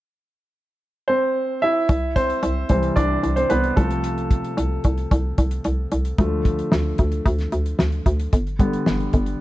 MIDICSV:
0, 0, Header, 1, 4, 480
1, 0, Start_track
1, 0, Key_signature, 0, "major"
1, 0, Tempo, 536481
1, 1693, Time_signature, 4, 2, 24, 8
1, 8418, End_track
2, 0, Start_track
2, 0, Title_t, "Grand piano"
2, 0, Program_c, 0, 0
2, 963, Note_on_c, 0, 72, 75
2, 979, Note_on_c, 0, 60, 57
2, 1422, Note_off_c, 0, 60, 0
2, 1449, Note_on_c, 0, 76, 84
2, 1463, Note_off_c, 0, 72, 0
2, 1464, Note_on_c, 0, 64, 62
2, 1858, Control_c, 0, 64, 127
2, 1905, Note_off_c, 0, 64, 0
2, 1931, Note_on_c, 0, 72, 93
2, 1944, Note_on_c, 0, 60, 61
2, 1946, Note_off_c, 0, 76, 0
2, 2385, Note_off_c, 0, 60, 0
2, 2399, Note_off_c, 0, 72, 0
2, 2409, Note_on_c, 0, 48, 43
2, 2412, Note_on_c, 0, 72, 66
2, 2413, Note_on_c, 0, 52, 42
2, 2421, Note_on_c, 0, 55, 46
2, 2423, Note_on_c, 0, 60, 51
2, 2642, Note_off_c, 0, 60, 0
2, 2646, Note_on_c, 0, 74, 71
2, 2657, Note_on_c, 0, 62, 60
2, 2660, Note_off_c, 0, 72, 0
2, 2990, Note_off_c, 0, 62, 0
2, 3007, Note_on_c, 0, 72, 69
2, 3021, Note_off_c, 0, 74, 0
2, 3022, Note_on_c, 0, 60, 54
2, 3095, Note_off_c, 0, 48, 0
2, 3097, Note_off_c, 0, 52, 0
2, 3101, Note_off_c, 0, 55, 0
2, 3128, Note_on_c, 0, 71, 66
2, 3129, Note_off_c, 0, 60, 0
2, 3134, Note_off_c, 0, 72, 0
2, 3143, Note_on_c, 0, 59, 53
2, 3361, Note_off_c, 0, 59, 0
2, 3367, Note_on_c, 0, 48, 47
2, 3367, Note_on_c, 0, 69, 76
2, 3372, Note_on_c, 0, 53, 44
2, 3378, Note_off_c, 0, 71, 0
2, 3378, Note_on_c, 0, 57, 50
2, 3386, Control_c, 0, 64, 0
2, 3567, Control_c, 0, 64, 127
2, 3689, Note_off_c, 0, 48, 0
2, 3692, Note_off_c, 0, 53, 0
2, 3816, Note_off_c, 0, 69, 0
2, 3822, Note_off_c, 0, 57, 0
2, 5533, Note_on_c, 0, 50, 46
2, 5538, Note_on_c, 0, 53, 46
2, 5543, Control_c, 0, 64, 0
2, 5544, Note_on_c, 0, 57, 54
2, 5719, Control_c, 0, 64, 127
2, 5852, Note_off_c, 0, 50, 0
2, 5855, Note_off_c, 0, 53, 0
2, 5858, Note_off_c, 0, 57, 0
2, 7464, Control_c, 0, 64, 0
2, 7639, Control_c, 0, 64, 127
2, 7684, Note_on_c, 0, 50, 46
2, 7689, Note_on_c, 0, 55, 43
2, 7697, Note_on_c, 0, 59, 52
2, 8007, Note_off_c, 0, 50, 0
2, 8010, Note_off_c, 0, 55, 0
2, 8014, Note_off_c, 0, 59, 0
2, 8418, End_track
3, 0, Start_track
3, 0, Title_t, "FM bass"
3, 0, Program_c, 1, 39
3, 1693, Note_on_c, 1, 36, 95
3, 2087, Note_off_c, 1, 36, 0
3, 2173, Note_on_c, 1, 36, 98
3, 2369, Note_off_c, 1, 36, 0
3, 2413, Note_on_c, 1, 36, 83
3, 2610, Note_off_c, 1, 36, 0
3, 2654, Note_on_c, 1, 36, 101
3, 2850, Note_off_c, 1, 36, 0
3, 2892, Note_on_c, 1, 36, 87
3, 3089, Note_off_c, 1, 36, 0
3, 3134, Note_on_c, 1, 36, 84
3, 3331, Note_off_c, 1, 36, 0
3, 3374, Note_on_c, 1, 36, 84
3, 3964, Note_off_c, 1, 36, 0
3, 4092, Note_on_c, 1, 36, 87
3, 4289, Note_off_c, 1, 36, 0
3, 4337, Note_on_c, 1, 36, 92
3, 4532, Note_off_c, 1, 36, 0
3, 4575, Note_on_c, 1, 36, 102
3, 4771, Note_off_c, 1, 36, 0
3, 4815, Note_on_c, 1, 36, 88
3, 5011, Note_off_c, 1, 36, 0
3, 5055, Note_on_c, 1, 36, 87
3, 5251, Note_off_c, 1, 36, 0
3, 5295, Note_on_c, 1, 36, 84
3, 5491, Note_off_c, 1, 36, 0
3, 5534, Note_on_c, 1, 38, 97
3, 5927, Note_off_c, 1, 38, 0
3, 6010, Note_on_c, 1, 38, 92
3, 6208, Note_off_c, 1, 38, 0
3, 6254, Note_on_c, 1, 38, 84
3, 6450, Note_off_c, 1, 38, 0
3, 6492, Note_on_c, 1, 38, 112
3, 6689, Note_off_c, 1, 38, 0
3, 6732, Note_on_c, 1, 38, 89
3, 6929, Note_off_c, 1, 38, 0
3, 6970, Note_on_c, 1, 38, 86
3, 7168, Note_off_c, 1, 38, 0
3, 7212, Note_on_c, 1, 38, 89
3, 7409, Note_off_c, 1, 38, 0
3, 7453, Note_on_c, 1, 31, 95
3, 7846, Note_off_c, 1, 31, 0
3, 7931, Note_on_c, 1, 31, 92
3, 8128, Note_off_c, 1, 31, 0
3, 8174, Note_on_c, 1, 31, 87
3, 8370, Note_off_c, 1, 31, 0
3, 8418, End_track
4, 0, Start_track
4, 0, Title_t, "Drums"
4, 1691, Note_on_c, 9, 42, 71
4, 1693, Note_on_c, 9, 36, 94
4, 1781, Note_off_c, 9, 42, 0
4, 1782, Note_off_c, 9, 36, 0
4, 1932, Note_on_c, 9, 36, 81
4, 1936, Note_on_c, 9, 42, 68
4, 2021, Note_off_c, 9, 36, 0
4, 2026, Note_off_c, 9, 42, 0
4, 2054, Note_on_c, 9, 42, 42
4, 2144, Note_off_c, 9, 42, 0
4, 2172, Note_on_c, 9, 42, 69
4, 2262, Note_off_c, 9, 42, 0
4, 2408, Note_on_c, 9, 42, 60
4, 2414, Note_on_c, 9, 36, 67
4, 2498, Note_off_c, 9, 42, 0
4, 2504, Note_off_c, 9, 36, 0
4, 2530, Note_on_c, 9, 42, 41
4, 2619, Note_off_c, 9, 42, 0
4, 2653, Note_on_c, 9, 36, 69
4, 2655, Note_on_c, 9, 42, 71
4, 2742, Note_off_c, 9, 36, 0
4, 2744, Note_off_c, 9, 42, 0
4, 2895, Note_on_c, 9, 42, 57
4, 2984, Note_off_c, 9, 42, 0
4, 3013, Note_on_c, 9, 42, 45
4, 3103, Note_off_c, 9, 42, 0
4, 3131, Note_on_c, 9, 42, 66
4, 3220, Note_off_c, 9, 42, 0
4, 3254, Note_on_c, 9, 42, 29
4, 3343, Note_off_c, 9, 42, 0
4, 3374, Note_on_c, 9, 36, 84
4, 3378, Note_on_c, 9, 42, 58
4, 3463, Note_off_c, 9, 36, 0
4, 3467, Note_off_c, 9, 42, 0
4, 3495, Note_on_c, 9, 42, 48
4, 3584, Note_off_c, 9, 42, 0
4, 3613, Note_on_c, 9, 42, 68
4, 3702, Note_off_c, 9, 42, 0
4, 3738, Note_on_c, 9, 42, 31
4, 3828, Note_off_c, 9, 42, 0
4, 3853, Note_on_c, 9, 36, 76
4, 3857, Note_on_c, 9, 42, 70
4, 3942, Note_off_c, 9, 36, 0
4, 3946, Note_off_c, 9, 42, 0
4, 3977, Note_on_c, 9, 42, 43
4, 4067, Note_off_c, 9, 42, 0
4, 4096, Note_on_c, 9, 42, 73
4, 4185, Note_off_c, 9, 42, 0
4, 4330, Note_on_c, 9, 42, 58
4, 4336, Note_on_c, 9, 36, 71
4, 4420, Note_off_c, 9, 42, 0
4, 4426, Note_off_c, 9, 36, 0
4, 4453, Note_on_c, 9, 42, 40
4, 4542, Note_off_c, 9, 42, 0
4, 4575, Note_on_c, 9, 36, 72
4, 4576, Note_on_c, 9, 42, 66
4, 4664, Note_off_c, 9, 36, 0
4, 4666, Note_off_c, 9, 42, 0
4, 4813, Note_on_c, 9, 42, 56
4, 4815, Note_on_c, 9, 36, 65
4, 4903, Note_off_c, 9, 42, 0
4, 4904, Note_off_c, 9, 36, 0
4, 4930, Note_on_c, 9, 42, 44
4, 5020, Note_off_c, 9, 42, 0
4, 5050, Note_on_c, 9, 42, 64
4, 5139, Note_off_c, 9, 42, 0
4, 5293, Note_on_c, 9, 42, 55
4, 5383, Note_off_c, 9, 42, 0
4, 5412, Note_on_c, 9, 42, 49
4, 5501, Note_off_c, 9, 42, 0
4, 5533, Note_on_c, 9, 42, 72
4, 5534, Note_on_c, 9, 36, 96
4, 5622, Note_off_c, 9, 42, 0
4, 5623, Note_off_c, 9, 36, 0
4, 5772, Note_on_c, 9, 36, 84
4, 5776, Note_on_c, 9, 42, 70
4, 5862, Note_off_c, 9, 36, 0
4, 5866, Note_off_c, 9, 42, 0
4, 5894, Note_on_c, 9, 42, 42
4, 5983, Note_off_c, 9, 42, 0
4, 6010, Note_on_c, 9, 38, 92
4, 6099, Note_off_c, 9, 38, 0
4, 6247, Note_on_c, 9, 42, 61
4, 6254, Note_on_c, 9, 36, 72
4, 6336, Note_off_c, 9, 42, 0
4, 6343, Note_off_c, 9, 36, 0
4, 6368, Note_on_c, 9, 42, 41
4, 6457, Note_off_c, 9, 42, 0
4, 6493, Note_on_c, 9, 36, 74
4, 6494, Note_on_c, 9, 42, 67
4, 6582, Note_off_c, 9, 36, 0
4, 6584, Note_off_c, 9, 42, 0
4, 6608, Note_on_c, 9, 42, 28
4, 6613, Note_on_c, 9, 38, 30
4, 6697, Note_off_c, 9, 42, 0
4, 6702, Note_off_c, 9, 38, 0
4, 6730, Note_on_c, 9, 42, 58
4, 6820, Note_off_c, 9, 42, 0
4, 6852, Note_on_c, 9, 42, 43
4, 6941, Note_off_c, 9, 42, 0
4, 6968, Note_on_c, 9, 38, 87
4, 7057, Note_off_c, 9, 38, 0
4, 7088, Note_on_c, 9, 42, 29
4, 7178, Note_off_c, 9, 42, 0
4, 7210, Note_on_c, 9, 36, 69
4, 7215, Note_on_c, 9, 42, 58
4, 7300, Note_off_c, 9, 36, 0
4, 7304, Note_off_c, 9, 42, 0
4, 7333, Note_on_c, 9, 42, 52
4, 7422, Note_off_c, 9, 42, 0
4, 7451, Note_on_c, 9, 42, 74
4, 7452, Note_on_c, 9, 36, 87
4, 7540, Note_off_c, 9, 42, 0
4, 7542, Note_off_c, 9, 36, 0
4, 7576, Note_on_c, 9, 42, 29
4, 7666, Note_off_c, 9, 42, 0
4, 7690, Note_on_c, 9, 36, 85
4, 7692, Note_on_c, 9, 42, 64
4, 7780, Note_off_c, 9, 36, 0
4, 7782, Note_off_c, 9, 42, 0
4, 7815, Note_on_c, 9, 42, 45
4, 7904, Note_off_c, 9, 42, 0
4, 7930, Note_on_c, 9, 38, 93
4, 8020, Note_off_c, 9, 38, 0
4, 8054, Note_on_c, 9, 42, 28
4, 8143, Note_off_c, 9, 42, 0
4, 8170, Note_on_c, 9, 42, 60
4, 8174, Note_on_c, 9, 36, 70
4, 8259, Note_off_c, 9, 42, 0
4, 8263, Note_off_c, 9, 36, 0
4, 8288, Note_on_c, 9, 42, 40
4, 8378, Note_off_c, 9, 42, 0
4, 8418, End_track
0, 0, End_of_file